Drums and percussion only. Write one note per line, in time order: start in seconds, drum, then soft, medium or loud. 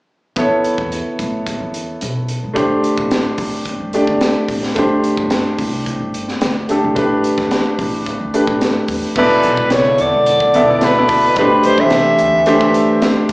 0.36 kick medium
0.36 closed hi-hat medium
0.64 closed hi-hat soft
0.78 kick medium
0.92 closed hi-hat medium
1.19 kick medium
1.19 closed hi-hat soft
1.47 kick medium
1.47 closed hi-hat medium
1.74 closed hi-hat soft
2.01 closed hi-hat medium
2.28 closed hi-hat soft
2.56 kick medium
2.56 closed hi-hat medium
2.84 closed hi-hat soft
2.98 kick medium
3.11 snare medium
3.11 closed hi-hat medium
3.38 kick medium
3.38 open hi-hat medium
3.65 kick medium
3.65 closed hi-hat medium
3.93 closed hi-hat soft
4.07 kick medium
4.21 snare medium
4.21 closed hi-hat medium
4.49 kick medium
4.49 open hi-hat medium
4.63 snare soft
4.76 kick medium
4.76 closed hi-hat medium
5.04 closed hi-hat soft
5.17 kick medium
5.30 snare medium
5.30 closed hi-hat medium
5.59 kick medium
5.59 open hi-hat medium
5.86 kick medium
5.86 closed hi-hat medium
6.14 closed hi-hat soft
6.28 snare soft
6.41 snare medium
6.41 closed hi-hat medium
6.69 closed hi-hat medium
6.96 kick medium
6.96 closed hi-hat medium
7.24 closed hi-hat soft
7.38 kick medium
7.38 snare soft
7.51 snare medium
7.51 closed hi-hat medium
7.79 kick medium
7.79 open hi-hat medium
8.06 kick medium
8.06 closed hi-hat medium
8.34 closed hi-hat medium
8.47 kick medium
8.61 snare medium
8.61 closed hi-hat medium
8.88 kick medium
8.88 open hi-hat medium
9.15 kick medium
9.15 crash medium
9.43 closed hi-hat medium
9.57 kick medium
9.70 snare medium
9.70 closed hi-hat medium
9.98 closed hi-hat medium
10.26 closed hi-hat medium
10.40 kick medium
10.54 closed hi-hat medium
10.81 snare medium
10.81 closed hi-hat medium
11.08 kick medium
11.08 open hi-hat medium
11.36 kick loud
11.36 closed hi-hat medium
11.63 closed hi-hat soft
11.78 kick medium
11.90 snare medium
11.90 closed hi-hat medium
12.19 closed hi-hat medium
12.46 closed hi-hat medium
12.61 kick medium
12.74 closed hi-hat medium
13.02 snare medium
13.02 closed hi-hat medium
13.29 kick medium
13.29 closed hi-hat medium